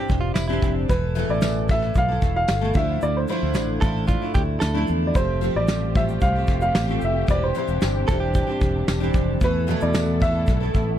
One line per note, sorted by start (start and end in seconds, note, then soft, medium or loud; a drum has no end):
0.00 0.49 C4 soft
0.00 0.48 D4 medium
0.00 0.20 G4 medium
0.00 0.48 G4 medium
0.00 0.59 C5 medium
0.09 0.32 E1 loud
0.09 kick medium
0.09 shaker medium
0.21 0.34 F4 medium
0.34 0.59 E1 medium
0.34 0.46 E4 medium
0.34 snare loud
0.34 tambourine medium
0.34 shaker medium
0.48 0.87 E3 medium
0.48 0.89 C4 medium
0.48 0.90 D4 medium
0.48 0.73 E4 medium
0.48 0.89 G4 medium
0.62 0.85 F1 medium
0.62 kick medium
0.62 shaker soft
0.88 1.23 E1 loud
0.88 1.14 E3 medium
0.88 1.15 A3 medium
0.88 1.15 E4 medium
0.88 1.15 A4 medium
0.88 1.31 B4 medium
0.88 kick medium
0.88 shaker medium
1.15 1.69 E2 medium
1.15 1.69 B2 medium
1.15 1.67 E3 medium
1.15 1.69 A3 medium
1.15 1.69 E4 medium
1.15 1.69 A4 medium
1.15 shaker medium
1.29 1.93 A1 medium
1.29 1.67 D5 medium
1.41 snare loud
1.41 tambourine medium
1.41 shaker medium
1.68 2.08 E3 medium
1.68 2.09 A3 medium
1.68 2.08 E4 medium
1.68 2.07 A4 medium
1.68 1.98 E5 loud
1.68 kick loud
1.68 shaker medium
1.82 snare soft
1.95 2.18 B1 loud
1.95 2.34 F5 loud
1.95 kick medium
1.95 shaker medium
2.08 2.62 E3 soft
2.08 2.61 A3 soft
2.08 2.62 E4 soft
2.08 2.61 A4 medium
2.21 2.44 E1 medium
2.21 kick medium
2.21 shaker soft
2.36 2.77 F5 loud
2.48 2.71 G1 medium
2.48 snare loud
2.48 tambourine medium
2.48 shaker medium
2.61 2.76 E2 medium
2.61 2.73 B2 medium
2.61 2.73 E3 medium
2.61 2.74 A3 medium
2.61 2.74 E4 medium
2.61 2.75 A4 medium
2.74 2.97 D2 loud
2.74 3.27 D3 medium
2.74 3.28 F3 medium
2.74 3.29 A3 medium
2.74 3.28 D4 medium
2.74 3.28 E4 medium
2.74 3.04 E5 medium
2.74 kick loud
2.74 shaker soft
3.01 3.24 D2 medium
3.01 3.16 D5 loud
3.01 shaker medium
3.17 3.22 C5 medium
3.28 3.82 D3 medium
3.28 3.82 F3 medium
3.28 3.83 A3 medium
3.28 3.82 D4 medium
3.28 3.82 E4 medium
3.28 4.85 C5 medium
3.28 shaker soft
3.43 3.56 D2 medium
3.54 3.77 A1 medium
3.54 snare medium
3.54 tambourine medium
3.54 shaker medium
3.81 4.15 A1 medium
3.81 4.22 F3 medium
3.81 4.22 A3 medium
3.81 4.21 D4 medium
3.81 4.20 E4 medium
3.81 4.07 A4 medium
3.81 kick medium
3.81 shaker soft
4.08 4.34 F4 medium
4.08 kick medium
4.08 shaker medium
4.22 4.74 A3 soft
4.22 4.73 D4 medium
4.22 4.73 E4 medium
4.34 4.57 D2 loud
4.34 4.42 G4 medium
4.34 kick medium
4.34 shaker soft
4.60 4.84 D2 medium
4.60 4.92 A4 medium
4.60 snare loud
4.60 tambourine medium
4.60 shaker medium
4.74 5.15 D3 medium
4.74 5.13 F3 medium
4.74 5.14 A3 medium
4.74 5.15 D4 medium
4.74 5.15 E4 medium
4.87 5.11 E2 medium
4.87 shaker soft
5.07 5.15 D5 medium
5.14 5.48 F1 medium
5.14 9.37 C3 medium
5.14 5.40 F3 medium
5.14 7.26 G3 medium
5.14 5.40 A3 medium
5.14 7.26 A3 medium
5.14 5.40 C4 medium
5.14 7.26 F4 medium
5.14 5.41 G4 medium
5.14 9.37 G4 medium
5.14 5.56 C5 medium
5.14 kick loud
5.14 shaker medium
5.41 5.94 F3 medium
5.41 5.94 A3 medium
5.41 5.96 C4 medium
5.41 5.96 G4 medium
5.41 shaker soft
5.56 6.19 A1 medium
5.56 5.93 D5 medium
5.68 snare loud
5.68 tambourine medium
5.68 shaker medium
5.95 6.35 F3 medium
5.95 6.35 A3 medium
5.95 6.35 C4 medium
5.95 6.34 G4 medium
5.95 6.02 E5 medium
5.95 kick medium
5.95 shaker medium
6.08 shaker soft
6.21 6.44 C2 loud
6.21 6.60 F5 medium
6.21 kick medium
6.21 shaker medium
6.36 6.88 A3 soft
6.36 6.88 C4 soft
6.36 6.87 G4 medium
6.47 6.70 F1 medium
6.47 kick medium
6.47 shaker soft
6.61 7.03 F5 loud
6.61 shaker medium
6.75 6.97 A1 medium
6.75 snare loud
6.75 tambourine medium
6.75 shaker medium
6.88 7.26 F3 medium
6.88 7.27 A3 medium
6.88 7.26 C4 medium
6.88 7.27 G4 medium
7.01 7.24 F1 medium
7.01 7.30 E5 medium
7.01 shaker soft
7.27 7.50 E1 medium
7.27 7.53 E3 medium
7.27 10.99 E3 medium
7.27 9.39 G3 medium
7.27 7.54 C4 medium
7.27 9.39 D4 medium
7.27 7.54 D4 medium
7.27 7.55 G4 medium
7.27 7.43 D5 loud
7.27 kick loud
7.27 shaker medium
7.43 7.55 C5 medium
7.54 8.07 E3 medium
7.54 8.07 C4 medium
7.54 8.08 D4 medium
7.54 8.08 G4 medium
7.54 9.12 C5 medium
7.54 shaker soft
7.68 7.79 E1 medium
7.68 shaker soft
7.81 8.04 G1 medium
7.81 snare loud
7.81 tambourine medium
7.81 shaker medium
8.07 8.41 E1 medium
8.07 8.48 E3 medium
8.07 8.47 C4 medium
8.07 8.46 D4 medium
8.07 8.45 G4 medium
8.07 8.20 A4 loud
8.07 kick medium
8.07 shaker medium
8.20 8.33 G4 medium
8.34 9.24 G4 medium
8.34 kick medium
8.34 shaker medium
8.47 9.00 C4 medium
8.47 8.99 D4 medium
8.47 8.99 G4 medium
8.61 8.83 E1 loud
8.61 kick medium
8.61 shaker soft
8.88 9.10 E1 medium
8.88 snare loud
8.88 tambourine medium
8.88 shaker medium
9.00 9.40 E3 medium
9.00 9.41 C4 medium
9.00 9.41 D4 medium
9.00 9.41 G4 medium
9.14 9.36 F1 medium
9.14 kick medium
9.14 shaker soft
9.41 9.74 E2 medium
9.41 10.99 B2 medium
9.41 9.67 E3 medium
9.41 9.67 A3 medium
9.41 10.99 A3 medium
9.41 10.99 B3 medium
9.41 9.67 E4 medium
9.41 10.99 A4 medium
9.41 9.67 A4 medium
9.41 9.80 B4 loud
9.41 kick medium
9.41 shaker medium
9.67 10.21 E2 medium
9.67 10.21 B2 medium
9.67 10.20 E3 medium
9.67 10.20 A3 medium
9.67 10.21 E4 loud
9.67 10.21 A4 medium
9.67 shaker soft
9.80 10.45 E2 medium
9.80 10.23 D5 medium
9.80 shaker medium
9.94 snare loud
9.94 tambourine medium
9.94 shaker medium
10.20 10.60 E3 medium
10.20 10.61 A3 medium
10.20 10.60 E4 medium
10.20 10.59 A4 medium
10.20 10.97 E5 loud
10.20 kick loud
10.20 shaker medium
10.47 10.70 B1 loud
10.47 kick medium
10.47 shaker medium
10.60 10.99 E3 soft
10.60 10.99 A3 soft
10.60 10.99 E4 medium
10.60 10.99 A4 medium
10.74 10.96 A1 medium
10.74 kick medium
10.74 shaker soft